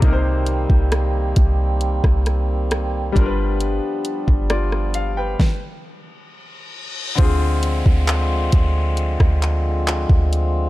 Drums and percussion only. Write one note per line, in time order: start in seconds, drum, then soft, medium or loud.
0.02 kick loud
0.02 closed hi-hat medium
0.46 closed hi-hat medium
0.70 kick medium
0.92 cross-stick loud
0.92 closed hi-hat medium
1.36 kick medium
1.36 closed hi-hat medium
1.81 closed hi-hat medium
2.04 kick loud
2.04 cross-stick medium
2.26 cross-stick medium
2.26 closed hi-hat medium
2.71 cross-stick loud
2.71 closed hi-hat medium
3.16 kick loud
3.16 closed hi-hat medium
3.61 closed hi-hat medium
4.05 closed hi-hat medium
4.28 kick medium
4.50 cross-stick loud
4.50 closed hi-hat medium
4.72 cross-stick medium
4.94 closed hi-hat medium
5.40 kick loud
5.40 snare medium
7.18 kick loud
7.18 closed hi-hat medium
7.63 closed hi-hat medium
7.86 kick medium
8.08 clap loud
8.08 closed hi-hat medium
8.52 kick medium
8.52 closed hi-hat medium
8.97 closed hi-hat medium
9.20 kick loud
9.20 cross-stick loud
9.42 clap medium
9.42 closed hi-hat medium
9.87 clap loud
9.87 closed hi-hat medium
10.09 kick medium
10.33 closed hi-hat medium